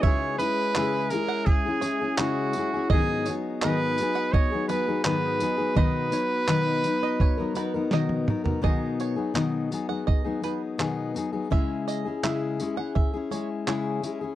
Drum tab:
TB |--x---x---x---x-|--x---x---x---x-|--x---x---x-----|--x---x---x---x-|
CP |----x-------x---|----x-------x---|----x-----------|----x-------x---|
SD |----------------|----------------|------------o---|----------------|
T1 |----------------|----------------|-------------o--|----------------|
T2 |----------------|----------------|--------------o-|----------------|
FT |----------------|----------------|---------------o|----------------|
BD |o-------o-------|o-------o-------|o-------o-------|o-------o-------|

TB |--x---x---x---x-|
CP |----x-------x---|
SD |----------------|
T1 |----------------|
T2 |----------------|
FT |----------------|
BD |o-------o-------|